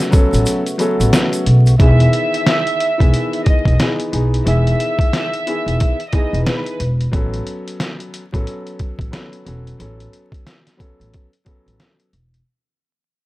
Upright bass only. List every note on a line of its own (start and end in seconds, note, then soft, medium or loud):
0.33 0.43 A1 medium
1.00 1.10 A1 loud
1.46 1.72 B1 medium
1.80 2.05 E1 loud
3.00 3.10 E1 medium
3.65 3.76 E1 medium
4.13 4.39 B1 medium
4.46 4.72 E1 loud
5.66 5.77 E1 medium
6.33 6.43 E1 medium
6.80 7.05 E1 medium
7.13 7.39 A1 loud
8.34 8.44 A1 medium
8.99 9.09 A1 medium
9.46 9.72 E1 medium
9.80 10.05 A1 loud
11.00 11.10 A1 medium
11.66 11.77 A1 medium
12.13 12.39 E1 medium